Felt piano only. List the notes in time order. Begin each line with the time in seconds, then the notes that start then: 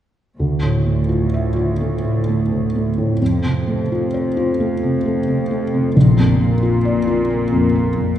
0.40 D2
0.63 A2
0.86 A3
1.09 F4
1.34 E5
1.56 F4
1.80 A3
2.05 A2
2.29 A3
2.52 A2
2.75 A3
2.98 A2
3.21 F2
3.44 C3
3.68 A3
3.92 F4
4.14 C5
4.37 F4
4.60 A3
4.84 C3
5.06 A3
5.28 C3
5.51 A3
5.74 C3
5.96 A#1
6.19 F2
6.41 A#3
6.63 F4
6.85 D5
7.07 F4
7.30 A#3
7.52 F2
7.75 A#3
7.98 F2